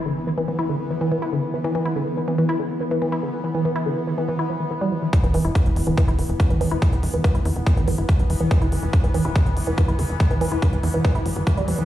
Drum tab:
HH |----------------|----------------|----------------|xxoxxxoxxxoxxxox|
BD |----------------|----------------|----------------|o---o---o---o---|

HH |xxoxxxoxxxoxxxox|xxoxxxoxxxoxxxox|xxoxxxoxxxoxxxox|
BD |o---o---o---o---|o---o---o---o---|o---o---o---o---|